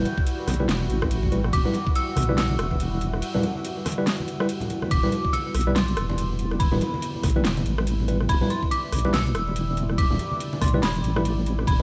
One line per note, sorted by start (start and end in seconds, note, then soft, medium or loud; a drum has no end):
0.00 4.87 G3 medium
0.00 4.87 E4 medium
0.00 4.90 F#4 medium
0.00 4.92 F#4 loud
0.00 0.22 G6 loud
0.05 closed hi-hat medium
0.05 muted conga medium
0.18 kick loud
0.27 closed hi-hat medium
0.27 crash soft
0.47 0.67 B1 loud
0.47 cross-stick medium
0.47 snare soft
0.47 open hi-hat medium
0.47 muted conga medium
0.47 high conga medium
0.54 closed hi-hat medium
0.60 0.66 G3 loud
0.60 0.66 E4 medium
0.60 0.66 B4 loud
0.69 0.88 E1 medium
0.69 snare loud
0.69 closed hi-hat medium
0.69 crash medium
0.81 high conga medium
0.90 1.52 A1 loud
0.90 closed hi-hat medium
1.02 kick medium
1.02 cross-stick medium
1.11 closed hi-hat medium
1.11 crash soft
1.23 kick medium
1.32 1.41 G3 medium
1.32 1.41 E4 medium
1.32 1.41 B4 medium
1.32 closed hi-hat medium
1.32 muted conga soft
1.44 cross-stick medium
1.53 1.65 E1 loud
1.53 1.97 D6 loud
1.53 kick loud
1.53 closed hi-hat medium
1.53 crash medium
1.65 1.75 G3 medium
1.65 1.75 E4 medium
1.65 1.75 B4 medium
1.65 low conga medium
1.74 closed hi-hat medium
1.74 muted conga medium
1.87 kick loud
1.95 2.36 E6 loud
1.95 closed hi-hat medium
1.95 crash soft
2.16 2.36 B1 loud
2.16 cross-stick medium
2.16 open hi-hat loud
2.16 high conga loud
2.23 closed hi-hat medium
2.29 2.39 G3 loud
2.29 2.39 E4 medium
2.29 2.39 B4 loud
2.38 2.57 B1 loud
2.38 4.45 E6 loud
2.38 snare loud
2.38 closed hi-hat medium
2.38 crash medium
2.50 high conga medium
2.59 3.22 E1 medium
2.59 cross-stick medium
2.59 closed hi-hat medium
2.71 kick medium
2.80 closed hi-hat medium
2.80 crash medium
3.01 closed hi-hat medium
3.14 cross-stick medium
3.22 closed hi-hat medium
3.22 crash medium
3.35 3.44 G3 medium
3.35 3.44 E4 medium
3.35 3.44 B4 medium
3.35 high conga medium
3.35 low conga loud
3.43 closed hi-hat medium
3.43 muted conga medium
3.65 closed hi-hat medium
3.65 crash soft
3.86 cross-stick medium
3.86 snare soft
3.86 open hi-hat loud
3.86 muted conga medium
3.86 high conga medium
3.92 closed hi-hat medium
3.98 4.04 G3 loud
3.98 4.04 E4 medium
3.98 4.04 B4 loud
4.07 snare loud
4.07 closed hi-hat medium
4.07 crash medium
4.20 high conga medium
4.28 closed hi-hat medium
4.40 4.46 G3 medium
4.40 4.46 E4 medium
4.40 4.46 B4 loud
4.40 cross-stick medium
4.49 closed hi-hat medium
4.49 crash soft
4.61 closed hi-hat soft
4.61 low conga medium
4.70 closed hi-hat medium
4.70 muted conga medium
4.82 cross-stick medium
4.82 high conga medium
4.91 5.03 E1 loud
4.91 11.82 G3 medium
4.91 8.28 B3 medium
4.91 11.82 E4 medium
4.91 5.30 D6 loud
4.91 kick loud
4.91 closed hi-hat medium
4.91 crash medium
5.03 5.13 G3 medium
5.03 5.13 E4 medium
5.03 5.13 B4 medium
5.03 muted conga medium
5.03 low conga loud
5.12 closed hi-hat medium
5.25 kick medium
5.33 5.77 E6 loud
5.33 closed hi-hat medium
5.33 crash soft
5.33 muted conga medium
5.54 5.74 B1 loud
5.54 cross-stick medium
5.54 open hi-hat loud
5.61 closed hi-hat medium
5.67 5.77 G3 loud
5.67 5.77 E4 medium
5.67 5.77 B4 loud
5.75 5.95 B1 loud
5.75 6.62 C6 loud
5.75 snare loud
5.75 closed hi-hat medium
5.75 crash medium
5.75 muted conga medium
5.88 closed hi-hat soft
5.97 6.80 E1 medium
5.97 cross-stick medium
5.97 closed hi-hat medium
6.09 muted conga medium
6.18 closed hi-hat medium
6.18 crash soft
6.39 closed hi-hat medium
6.51 cross-stick medium
6.51 muted conga medium
6.60 7.19 B5 medium
6.60 kick loud
6.60 closed hi-hat medium
6.60 crash medium
6.72 6.83 G3 medium
6.72 6.82 E4 medium
6.72 6.83 B4 medium
6.72 low conga loud
6.81 closed hi-hat medium
6.81 muted conga medium
6.94 high conga medium
7.02 closed hi-hat medium
7.02 crash soft
7.15 high conga medium
7.23 7.43 B1 loud
7.23 kick loud
7.23 cross-stick medium
7.23 snare soft
7.23 open hi-hat loud
7.23 muted conga soft
7.30 closed hi-hat medium
7.36 7.42 G3 medium
7.36 7.42 E4 medium
7.36 7.42 B4 loud
7.36 high conga medium
7.45 7.64 E1 medium
7.45 snare loud
7.45 closed hi-hat medium
7.45 crash medium
7.57 closed hi-hat soft
7.57 muted conga medium
7.66 8.28 A1 loud
7.66 closed hi-hat medium
7.78 cross-stick medium
7.87 closed hi-hat medium
7.87 crash soft
8.00 muted conga medium
8.08 8.17 G3 medium
8.08 8.17 E4 medium
8.08 8.17 B4 medium
8.08 closed hi-hat medium
8.20 cross-stick medium
8.29 8.41 E1 loud
8.29 11.66 D5 medium
8.29 8.51 B5 loud
8.29 kick loud
8.29 closed hi-hat medium
8.29 crash medium
8.29 muted conga medium
8.41 8.51 G3 medium
8.41 8.51 E4 medium
8.41 8.51 B4 medium
8.41 low conga loud
8.50 8.60 C6 medium
8.50 closed hi-hat medium
8.63 kick medium
8.71 9.15 D6 loud
8.71 closed hi-hat medium
8.71 crash soft
8.71 muted conga medium
8.92 9.12 B1 loud
8.92 cross-stick medium
8.92 open hi-hat loud
8.99 closed hi-hat medium
9.05 9.15 G3 loud
9.05 9.15 E4 medium
9.05 9.15 B4 loud
9.05 muted conga medium
9.13 9.33 B1 loud
9.13 9.94 E6 loud
9.13 snare loud
9.13 closed hi-hat medium
9.13 crash medium
9.26 closed hi-hat soft
9.35 10.18 E1 medium
9.35 cross-stick medium
9.35 closed hi-hat medium
9.47 muted conga soft
9.56 closed hi-hat medium
9.56 crash soft
9.77 closed hi-hat medium
9.77 muted conga medium
9.89 cross-stick medium
9.98 10.37 D6 loud
9.98 kick loud
9.98 closed hi-hat medium
9.98 crash medium
10.11 low conga medium
10.19 closed hi-hat medium
10.19 muted conga medium
10.32 high conga medium
10.40 closed hi-hat medium
10.40 crash soft
10.53 muted conga medium
10.53 high conga medium
10.62 10.81 B1 loud
10.62 10.71 C6 medium
10.62 kick loud
10.62 cross-stick medium
10.62 snare soft
10.62 open hi-hat medium
10.68 closed hi-hat medium
10.73 10.80 G3 medium
10.73 10.80 E4 medium
10.73 10.80 B4 loud
10.73 high conga loud
10.83 11.02 E1 medium
10.83 11.22 B5 medium
10.83 snare loud
10.83 closed hi-hat medium
10.83 crash medium
10.95 closed hi-hat soft
10.95 muted conga medium
11.04 11.66 A1 loud
11.04 closed hi-hat medium
11.16 11.22 G3 medium
11.16 11.22 E4 medium
11.16 11.22 B4 loud
11.16 cross-stick medium
11.25 closed hi-hat medium
11.25 crash soft
11.25 muted conga medium
11.46 closed hi-hat medium
11.59 cross-stick medium
11.67 11.79 E1 loud
11.67 11.82 B5 medium
11.67 kick loud
11.67 closed hi-hat medium
11.67 crash medium